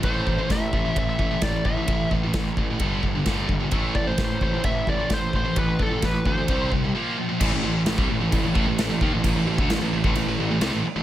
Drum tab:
CC |----------------|----------------|----------------|----------------|
RD |b---b---b---b---|b---b---b---b---|b---b---b---b---|b---b---b-------|
SD |----o-------o---|----o-------o---|----o-------o---|----o-----------|
BD |o-o-o-o-o-o-o-o-|o-o-o-o-o-o-o-o-|o-o-o-o-o-o-o-o-|o-o-o-o-o-o-----|

CC |x---x---x---x---|x---x---x---x---|
RD |----------------|----------------|
SD |----o-------o---|----o-------o---|
BD |o----o--o-o---o-|o--o---o--------|